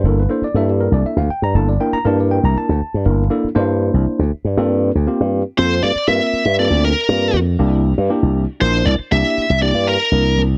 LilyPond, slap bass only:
\new Staff \with { instrumentName = "Slap bass" } { \clef bass \time 6/8 \key g \dorian \tempo 4. = 79 g,,8 r8 g,8. c,16 r16 d,16 r16 g,16 | g,,8 r8 g,8. c,16 r16 d,16 r16 g,16 | g,,8 r8 g,8. c,16 r16 d,16 r16 g,16 | g,8. d,16 r16 g,8 r16 f,8 g,16 r16 |
g,16 r8 g,8 d,8 r16 g,8 f,8 | c,8. g,16 r16 c,8 r16 bes,,8 c,16 r16 | c,16 r8 c,8 g,8 r16 c,8 c,8 | }